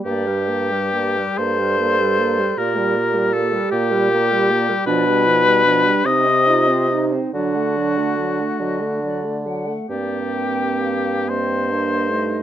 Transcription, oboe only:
X:1
M:6/8
L:1/8
Q:3/8=48
K:Gm
V:1 name="Oboe"
G3 c3 | B2 A G3 | =B3 e2 z | ^F4- F z |
G3 c3 |]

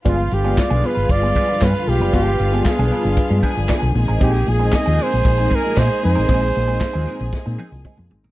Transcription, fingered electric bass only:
X:1
M:4/4
L:1/16
Q:1/4=116
K:Gphr
V:1 name="Fingered electric bass" clef=bass
G,,,2 G,,,2 z =B,,, z G,,, G,,,2 z2 G,, z B,,, ^F,,, | G,,,2 G,,,2 z =B,,, z G,,, z G,, z G,,, z B,,, _B,,, =A,,, | B,,,2 B,,,2 z E,, z B,,, B,,,2 z2 B,, z F,, =A,,, | B,,,2 B,,,2 z E,, z B,,, z B,, z C,, z F,, A,,, =A,,, |]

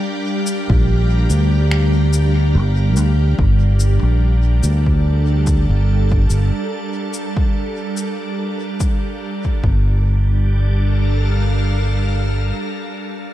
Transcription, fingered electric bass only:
X:1
M:4/4
L:1/16
Q:"Swing 16ths" 1/4=72
K:Gm
V:1 name="Fingered electric bass" clef=bass
z3 B,,,3 D,,6 G,,,2 D,,2 | G,,,3 B,,,3 D,,4- D,, G,,,3 G,,, z | z12 z2 G,,,2- | G,,,12 z4 |]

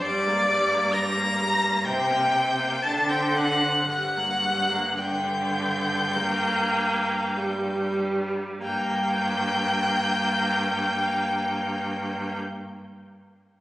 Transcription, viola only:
X:1
M:4/4
L:1/16
Q:1/4=50
K:Gm
V:1 name="Viola"
G, B, G, B, G, B, G, B, C B, C B, D C D C | G, B, G, B, D,4 B,4 G,4 | B,16 |]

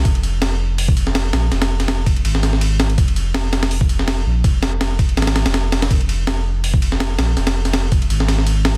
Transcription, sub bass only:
X:1
M:4/4
L:1/16
Q:"Swing 16ths" 1/4=164
K:Fm
V:1 name="Sub bass" clef=bass
F,,,12- F,,,2 B,,,2 | F,,,8 A,,,8 | F,,,12- F,,,2 B,,,2 | F,,,8 A,,,3 F,,,4- F,,, |
F,,,12- F,,,2 B,,,2 | F,,,8 A,,,8 |]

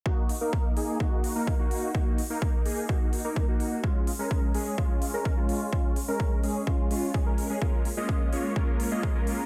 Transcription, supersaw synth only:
X:1
M:4/4
L:1/16
Q:1/4=127
K:Ebm
V:1 name="Supersaw synth"
[B,EG]2 z [B,EB]3 [B,EA]2 [B,EG]3 [B,EB]2 [B,EG]3 | z3 [B,EB]3 [B,EA]2 [EG]3 [B,EB]2 [B,EG]3 | [A,DF]2 z [A,DB]3 [A,DA]2 [DF]3 [A,DB]2 [A,DF]3 | [DF]2 z [A,DB]3 [A,DA]2 [A,DF]2 [A,DF]2 [A,DA] [A,DB]2 [A,DA] |
[A,B,DFB]2 z [A,B,DFe]3 [A,B,DFd]2 [A,B,DFB]3 [A,B,DFe]2 [A,B,DFB]3 |]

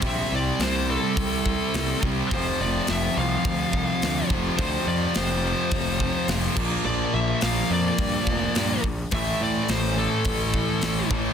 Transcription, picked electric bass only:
X:1
M:4/4
L:1/8
Q:1/4=106
K:F
V:1 name="Picked electric bass" clef=bass
B,,, C,, C,,2 C,,2 C,, C,, | F,,, F,,, F,,, C,, D,, C,, D,, F,,, | D,, F,, F,,,2 F,,,2 F,,, B,,, | B,,, B,,, B,,, F,, G,, F,,, G,, B,,, |
A,,, A,, A,,,2 A,,,2 A,,, A,,, |]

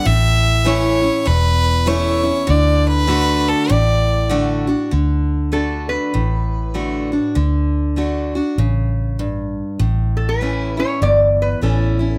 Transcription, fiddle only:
X:1
M:4/4
L:1/8
Q:"Swing" 1/4=99
K:D
V:1 name="Fiddle"
e2 c2 B2 c2 | d B2 A d2 z2 | z8 | z8 |
z8 |]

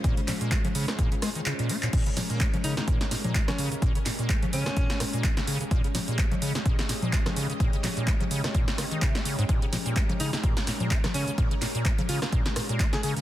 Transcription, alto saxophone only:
X:1
M:4/4
L:1/16
Q:"Swing 16ths" 1/4=127
K:Bbdor
V:1 name="Alto saxophone"
z16 | z6 E E z4 z D z2 | z6 D4 z6 | z16 |
z16 | z6 E E z6 D z | z6 F F z4 z A A z |]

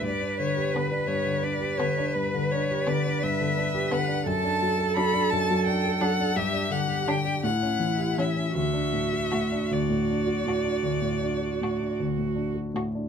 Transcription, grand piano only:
X:1
M:12/8
L:1/16
Q:3/8=56
K:D
V:1 name="Grand piano"
G,, D D, G D, D G,, D, D G D, D G,, D, D G D, D G,, D, D G D, D | F,, D F, A F, D F,, F, D A F, D G,, D D, G D, D A,, C E, G E, C | D,, D A,, F A,, D D,, A,, D F A,, D D,, A,, D F A,, D D,, A,, D F A,, D |]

